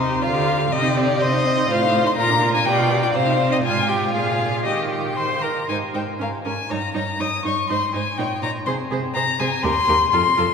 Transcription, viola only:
Already playing: D#4
0.09 G4
0.21 F4
0.33 G4
0.46 F4
0.58 G4
0.70 C4
0.82 D#4
0.95 C4
1.08 D#4
1.20 C4
1.32 D#4
1.45 C4
1.58 D#4
1.69 F4
1.81 D#4
1.94 F4
2.05 D#4
2.18 F4
2.29 D4
2.42 F4
2.54 D4
2.67 G4
2.79 F4
2.90 G4
3.02 F4
3.14 C4
3.26 D#4
3.38 C4
3.50 D#4
3.63 F4
3.88 G4
4.14 G#4
4.65 G4
5.17 C5
5.43 A#4
5.69 D#4
5.94 D#4
6.19 C#4
6.45 C#4
6.70 D#4
6.94 D#4
7.20 D#4
7.44 D#4
7.69 D#4
7.93 D#4
8.18 D#4
8.42 D#4
8.67 G#4
8.91 G#4
9.15 G#4
9.39 G#4
9.63 G4
9.88 G4
10.13 F4
10.37 F4

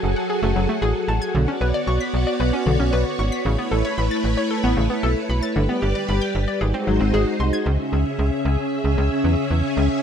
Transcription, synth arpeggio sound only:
0.16 F#5
0.30 G#4
0.43 A3
0.56 F#3
0.69 A3
0.82 G#4
1.08 A5
1.22 G#6
1.35 D3
1.48 C#4
1.61 B4
1.74 D5
1.87 C#6
2.00 B6
2.27 D5
2.40 B4
2.53 C#4
2.66 D3
2.80 C#4
2.93 B4
3.19 C#6
3.32 B6
3.45 C#3
3.58 B3
3.71 A4
3.85 C#5
3.98 B5
4.11 A6
4.37 C#5
4.51 A4
4.64 B3
4.77 C#3
4.90 B3
5.03 A4
5.30 B5
5.43 A6
5.56 D3
5.69 B3
5.82 G4
5.95 D5
6.09 B5
6.22 G6
6.48 D5
6.61 G#4
6.74 C4
6.87 F#3
7.00 C4
7.14 G#4
7.40 C6
7.53 G#6

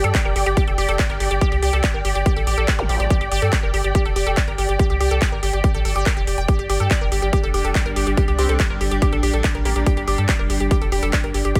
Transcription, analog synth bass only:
0.04 G2
0.25 F1
0.36 G1
0.46 G1
0.67 F1
0.78 F1
0.89 F1
1.10 G1
1.20 G1
1.31 G1
1.52 C2
1.63 C2
1.73 C2
1.94 G1
2.05 G1
2.15 G1
2.37 A1
2.47 A1
2.58 A1
2.79 A1
2.89 A1
3.00 A1
3.21 G1
3.32 G1
3.42 G2
3.63 F1
3.74 G1
3.84 G1
4.05 F1
4.16 F1
4.27 F1
4.48 G1
4.58 G1
4.69 G1
4.90 C2
5.01 C2
5.11 C2
5.32 G1
5.43 G1
5.53 G1
5.74 A1
5.85 G1
5.96 G1
6.17 F1
6.27 F1
6.38 F1
6.59 G1
6.70 G1
6.80 G2
7.01 F1
7.12 G1
7.22 G1
7.43 F1
7.54 F1
7.65 F1
7.86 G1
7.96 G1
8.07 G1
8.28 C2
8.39 C2
8.49 C2
8.70 G1
8.81 G1
8.91 G1
9.13 A1
9.23 A1
9.34 A1
9.55 A1
9.65 A1
9.76 A1
9.97 G1
10.08 G1
10.18 G2
10.39 F1
10.50 G1
10.60 G1
10.82 F1
10.92 F1
11.03 F1
11.24 G1
11.34 G1
11.45 G1

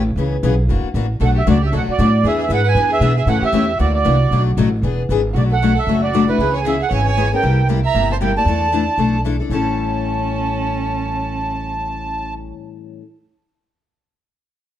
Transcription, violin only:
1.21 A4
1.36 G4
1.47 F#4
1.61 G4
1.72 A4
1.87 F#4
2.24 G#4
2.39 G#4
2.50 B4
2.64 B4
2.91 G#4
3.16 G#4
3.27 A4
3.40 G4
3.79 F#4
3.93 F#4
5.34 F#4
5.50 A4
5.74 A4
6.03 F#4
6.28 E4
6.53 C#5
6.65 G#4
6.80 G#4
6.91 C#5
7.06 C#5
7.33 A#4
7.85 E5
8.13 C5
8.24 A#4
8.38 D5
9.51 C#4

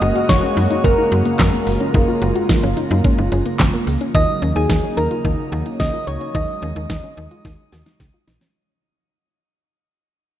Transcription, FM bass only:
0.02 F#1
0.29 F#1
0.57 F#2
0.84 F#1
1.12 F#2
1.39 F#2
1.67 F#1
1.94 F#1
2.22 F#1
2.63 F#1
2.91 F#2
3.18 F#1
3.32 F#1
3.60 F#1
3.87 C#2
4.15 D#2
4.42 D#2
4.56 D#2
4.70 D#2
4.97 D#2
5.25 D#2
5.52 D#2
5.80 C#2
6.07 C#2
6.35 D#2
6.62 D#2
6.76 D#2
6.90 D#2
7.17 D#2
7.45 D#2
7.73 D#2
8.00 C#2
8.28 A#1

